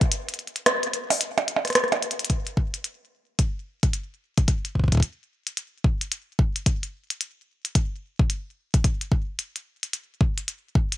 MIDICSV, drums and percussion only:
0, 0, Header, 1, 3, 480
1, 0, Start_track
1, 0, Tempo, 545455
1, 102, Time_signature, 4, 2, 24, 8
1, 9660, End_track
2, 0, Start_track
2, 0, Title_t, "Percussion blips"
2, 583, Note_on_c, 9, 60, 58
2, 671, Note_off_c, 9, 60, 0
2, 972, Note_on_c, 9, 60, 57
2, 1060, Note_off_c, 9, 60, 0
2, 1211, Note_on_c, 9, 60, 82
2, 1299, Note_off_c, 9, 60, 0
2, 1377, Note_on_c, 9, 60, 58
2, 1465, Note_off_c, 9, 60, 0
2, 1691, Note_on_c, 9, 60, 66
2, 1779, Note_off_c, 9, 60, 0
2, 9660, End_track
3, 0, Start_track
3, 0, Title_t, "Drums"
3, 11, Note_on_c, 9, 36, 116
3, 11, Note_on_c, 9, 42, 39
3, 99, Note_off_c, 9, 36, 0
3, 99, Note_off_c, 9, 42, 0
3, 102, Note_on_c, 9, 42, 95
3, 190, Note_off_c, 9, 42, 0
3, 251, Note_on_c, 9, 42, 40
3, 297, Note_off_c, 9, 42, 0
3, 297, Note_on_c, 9, 42, 34
3, 343, Note_off_c, 9, 42, 0
3, 343, Note_on_c, 9, 42, 25
3, 417, Note_off_c, 9, 42, 0
3, 417, Note_on_c, 9, 42, 22
3, 492, Note_off_c, 9, 42, 0
3, 492, Note_on_c, 9, 42, 41
3, 580, Note_off_c, 9, 42, 0
3, 583, Note_on_c, 9, 37, 120
3, 583, Note_on_c, 9, 42, 97
3, 671, Note_off_c, 9, 37, 0
3, 671, Note_off_c, 9, 42, 0
3, 732, Note_on_c, 9, 42, 43
3, 820, Note_off_c, 9, 42, 0
3, 823, Note_on_c, 9, 42, 68
3, 911, Note_off_c, 9, 42, 0
3, 972, Note_on_c, 9, 46, 84
3, 1060, Note_off_c, 9, 46, 0
3, 1063, Note_on_c, 9, 42, 98
3, 1151, Note_off_c, 9, 42, 0
3, 1211, Note_on_c, 9, 42, 41
3, 1299, Note_off_c, 9, 42, 0
3, 1302, Note_on_c, 9, 42, 68
3, 1390, Note_off_c, 9, 42, 0
3, 1451, Note_on_c, 9, 37, 28
3, 1451, Note_on_c, 9, 42, 37
3, 1474, Note_off_c, 9, 42, 0
3, 1474, Note_on_c, 9, 42, 30
3, 1497, Note_off_c, 9, 37, 0
3, 1497, Note_off_c, 9, 42, 0
3, 1497, Note_on_c, 9, 37, 34
3, 1497, Note_on_c, 9, 42, 26
3, 1520, Note_off_c, 9, 42, 0
3, 1520, Note_on_c, 9, 42, 22
3, 1542, Note_off_c, 9, 37, 0
3, 1542, Note_off_c, 9, 42, 0
3, 1542, Note_on_c, 9, 37, 108
3, 1542, Note_on_c, 9, 42, 96
3, 1616, Note_off_c, 9, 37, 0
3, 1616, Note_off_c, 9, 42, 0
3, 1616, Note_on_c, 9, 37, 48
3, 1616, Note_on_c, 9, 42, 11
3, 1654, Note_off_c, 9, 42, 0
3, 1654, Note_on_c, 9, 42, 9
3, 1691, Note_off_c, 9, 42, 0
3, 1691, Note_on_c, 9, 42, 38
3, 1704, Note_off_c, 9, 37, 0
3, 1779, Note_off_c, 9, 42, 0
3, 1782, Note_on_c, 9, 42, 57
3, 1856, Note_off_c, 9, 42, 0
3, 1856, Note_on_c, 9, 42, 60
3, 1931, Note_off_c, 9, 42, 0
3, 1931, Note_on_c, 9, 42, 54
3, 1976, Note_off_c, 9, 42, 0
3, 1976, Note_on_c, 9, 42, 85
3, 2022, Note_off_c, 9, 42, 0
3, 2022, Note_on_c, 9, 42, 58
3, 2023, Note_on_c, 9, 36, 90
3, 2110, Note_off_c, 9, 42, 0
3, 2111, Note_off_c, 9, 36, 0
3, 2170, Note_on_c, 9, 42, 34
3, 2258, Note_off_c, 9, 42, 0
3, 2262, Note_on_c, 9, 36, 90
3, 2350, Note_off_c, 9, 36, 0
3, 2410, Note_on_c, 9, 42, 48
3, 2498, Note_off_c, 9, 42, 0
3, 2502, Note_on_c, 9, 42, 61
3, 2590, Note_off_c, 9, 42, 0
3, 2982, Note_on_c, 9, 36, 102
3, 2982, Note_on_c, 9, 42, 62
3, 3070, Note_off_c, 9, 36, 0
3, 3070, Note_off_c, 9, 42, 0
3, 3371, Note_on_c, 9, 36, 107
3, 3371, Note_on_c, 9, 42, 47
3, 3459, Note_off_c, 9, 36, 0
3, 3459, Note_off_c, 9, 42, 0
3, 3462, Note_on_c, 9, 42, 57
3, 3550, Note_off_c, 9, 42, 0
3, 3850, Note_on_c, 9, 42, 49
3, 3851, Note_on_c, 9, 36, 105
3, 3938, Note_off_c, 9, 42, 0
3, 3939, Note_off_c, 9, 36, 0
3, 3942, Note_on_c, 9, 36, 90
3, 3942, Note_on_c, 9, 42, 58
3, 4030, Note_off_c, 9, 36, 0
3, 4030, Note_off_c, 9, 42, 0
3, 4091, Note_on_c, 9, 42, 34
3, 4179, Note_off_c, 9, 42, 0
3, 4182, Note_on_c, 9, 36, 41
3, 4220, Note_off_c, 9, 36, 0
3, 4220, Note_on_c, 9, 36, 49
3, 4257, Note_off_c, 9, 36, 0
3, 4257, Note_on_c, 9, 36, 54
3, 4294, Note_off_c, 9, 36, 0
3, 4294, Note_on_c, 9, 36, 60
3, 4331, Note_off_c, 9, 36, 0
3, 4331, Note_on_c, 9, 36, 67
3, 4331, Note_on_c, 9, 42, 46
3, 4354, Note_off_c, 9, 36, 0
3, 4354, Note_on_c, 9, 36, 74
3, 4377, Note_off_c, 9, 36, 0
3, 4377, Note_on_c, 9, 36, 78
3, 4400, Note_off_c, 9, 36, 0
3, 4400, Note_on_c, 9, 36, 86
3, 4419, Note_off_c, 9, 42, 0
3, 4422, Note_on_c, 9, 42, 61
3, 4488, Note_off_c, 9, 36, 0
3, 4510, Note_off_c, 9, 42, 0
3, 4811, Note_on_c, 9, 42, 49
3, 4899, Note_off_c, 9, 42, 0
3, 4903, Note_on_c, 9, 42, 61
3, 4991, Note_off_c, 9, 42, 0
3, 5143, Note_on_c, 9, 36, 114
3, 5231, Note_off_c, 9, 36, 0
3, 5291, Note_on_c, 9, 42, 47
3, 5379, Note_off_c, 9, 42, 0
3, 5382, Note_on_c, 9, 42, 60
3, 5470, Note_off_c, 9, 42, 0
3, 5622, Note_on_c, 9, 36, 117
3, 5710, Note_off_c, 9, 36, 0
3, 5771, Note_on_c, 9, 42, 49
3, 5859, Note_off_c, 9, 42, 0
3, 5863, Note_on_c, 9, 36, 93
3, 5863, Note_on_c, 9, 42, 57
3, 5951, Note_off_c, 9, 36, 0
3, 5951, Note_off_c, 9, 42, 0
3, 6012, Note_on_c, 9, 42, 34
3, 6100, Note_off_c, 9, 42, 0
3, 6251, Note_on_c, 9, 42, 48
3, 6339, Note_off_c, 9, 42, 0
3, 6342, Note_on_c, 9, 42, 60
3, 6430, Note_off_c, 9, 42, 0
3, 6731, Note_on_c, 9, 42, 52
3, 6819, Note_off_c, 9, 42, 0
3, 6822, Note_on_c, 9, 36, 113
3, 6822, Note_on_c, 9, 42, 64
3, 6910, Note_off_c, 9, 36, 0
3, 6910, Note_off_c, 9, 42, 0
3, 7211, Note_on_c, 9, 36, 114
3, 7299, Note_off_c, 9, 36, 0
3, 7302, Note_on_c, 9, 42, 59
3, 7390, Note_off_c, 9, 42, 0
3, 7691, Note_on_c, 9, 36, 112
3, 7691, Note_on_c, 9, 42, 51
3, 7779, Note_off_c, 9, 36, 0
3, 7779, Note_off_c, 9, 42, 0
3, 7782, Note_on_c, 9, 36, 91
3, 7782, Note_on_c, 9, 42, 59
3, 7870, Note_off_c, 9, 36, 0
3, 7870, Note_off_c, 9, 42, 0
3, 7931, Note_on_c, 9, 42, 35
3, 8019, Note_off_c, 9, 42, 0
3, 8022, Note_on_c, 9, 36, 95
3, 8110, Note_off_c, 9, 36, 0
3, 8262, Note_on_c, 9, 42, 59
3, 8350, Note_off_c, 9, 42, 0
3, 8411, Note_on_c, 9, 42, 34
3, 8499, Note_off_c, 9, 42, 0
3, 8651, Note_on_c, 9, 42, 49
3, 8739, Note_off_c, 9, 42, 0
3, 8742, Note_on_c, 9, 42, 64
3, 8830, Note_off_c, 9, 42, 0
3, 8982, Note_on_c, 9, 36, 111
3, 9070, Note_off_c, 9, 36, 0
3, 9131, Note_on_c, 9, 42, 46
3, 9219, Note_off_c, 9, 42, 0
3, 9222, Note_on_c, 9, 42, 58
3, 9310, Note_off_c, 9, 42, 0
3, 9462, Note_on_c, 9, 36, 112
3, 9550, Note_off_c, 9, 36, 0
3, 9611, Note_on_c, 9, 42, 48
3, 9660, Note_off_c, 9, 42, 0
3, 9660, End_track
0, 0, End_of_file